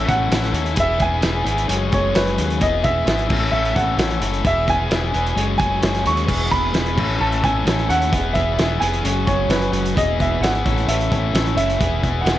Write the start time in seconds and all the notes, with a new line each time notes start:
0.06 A1 C#4 E4 A4 F#5, kick, closed hi-hat
0.29 A1 C#4 E4 A4, snare, closed hi-hat
0.44 snare, closed hi-hat
0.52 D#2 C#4 E4 A4, closed hi-hat
0.66 closed hi-hat
0.75 E1 B3 E4 G#4, kick, closed hi-hat
0.80 E5
0.98 E1 B3 E4 G#4, kick, closed hi-hat
1.02 G#5
1.21 E1 B3 E4 G#4, snare, closed hi-hat
1.45 G#1 B3 E4 G#4, closed hi-hat
1.58 closed hi-hat
1.68 F#1 F#3 G#3 C#4 G#4, closed hi-hat
1.91 F#1 F#3 G#3 C#4 G#4 C#5, kick, closed hi-hat
2.15 F#1 F#3 G#3 C#4 G#4 B4, snare, closed hi-hat
2.27 closed hi-hat
2.37 D#2 F#3 G#3 C#4 G#4, closed hi-hat
2.50 closed hi-hat
2.61 E1 B3 E4 G#4 D#5, kick, closed hi-hat
2.83 E1 B3 E4 G#4 E5, kick, closed hi-hat
3.05 G#1 B3 E4 G#4, snare, closed hi-hat
3.19 closed hi-hat
3.28 A1 C#4 E4 A4, kick, crash
3.51 A1 C#4 E4 A4 E5
3.65 closed hi-hat
3.74 A1 C#4 E4 A4 F#5, kick, closed hi-hat
3.97 A1 C#4 E4 A4, snare, closed hi-hat
4.11 closed hi-hat
4.21 F#1 C#4 E4 A4, closed hi-hat
4.33 closed hi-hat
4.44 E1 B3 E4 G#4 E5, kick, closed hi-hat
4.66 E1 B3 E4 G#4 G#5, kick, closed hi-hat
4.89 E1 B3 E4 G#4, snare, closed hi-hat
5.12 E1 B3 E4 G#4, closed hi-hat
5.26 closed hi-hat
5.35 F#1 F#3 G#3 C#4 G#4, closed hi-hat
5.58 F#1 F#3 G#3 C#4 G#4 G#5, kick, closed hi-hat
5.82 F#1 F#3 G#3 C#4 G#4, snare, closed hi-hat
5.94 snare, closed hi-hat
6.04 D#2 F#3 G#3 C#4 G#4 C#6, closed hi-hat
6.17 closed hi-hat
6.26 E1 B3 E4 G#4, kick, crash
6.50 E1 B3 E4 G#4 B5, kick, closed hi-hat
6.72 E1 B3 E4 G#4, snare, closed hi-hat
6.86 closed hi-hat
6.96 A1 C#4 E4 A4, kick, crash
7.20 A1 C#4 E4 A4 A5
7.32 closed hi-hat
7.43 A1 C#4 E4 A4 G#5, kick, closed hi-hat
7.65 A1 C#4 E4 A4, snare, closed hi-hat
7.79 closed hi-hat
7.88 D#2 C#4 E4 A4 F#5, closed hi-hat
8.02 closed hi-hat
8.11 E1 B3 E4 G#4, kick, closed hi-hat
8.33 E1 B3 E4 G#4 E5, kick, closed hi-hat
8.58 E1 B3 E4 G#4, snare, closed hi-hat
8.80 F1 B3 E4 G#4 G#5, closed hi-hat
8.94 closed hi-hat
9.04 F#1 F#3 G#3 C#4 F#4 G#4, closed hi-hat
9.26 F#1 F#3 G#3 C#4 F#4 G#4 C#5, kick, closed hi-hat
9.48 F#1 F#3 G#3 C#4 F#4 G#4 B4, snare, closed hi-hat
9.62 closed hi-hat
9.71 F#1 F#3 G#3 C#4 F#4 G#4, closed hi-hat
9.86 closed hi-hat
9.95 E1 B3 E4 G#4 D#5, kick, closed hi-hat
10.18 E1 B3 E4 G#4 E5, kick, closed hi-hat
10.40 G#1 B3 E4 G#4 F#5, closed hi-hat
10.44 snare
10.55 closed hi-hat
10.65 A1 C#4 E4 A4, kick, closed hi-hat
10.78 closed hi-hat
10.87 A1 C#4 E4 A4 E5, closed hi-hat
11.01 closed hi-hat
11.10 A1 C#4 E4 A4, kick, closed hi-hat
11.33 A1 C#4 E4 A4, snare, closed hi-hat
11.46 closed hi-hat
11.56 F#1 C#4 E4 A4 E5, closed hi-hat
11.70 closed hi-hat
11.79 E1 B3 E4 G#4, kick, closed hi-hat
12.02 E1 B3 E4 G#4, kick, closed hi-hat
12.21 E1 B3 E4 G#4 F#5
12.26 snare, closed hi-hat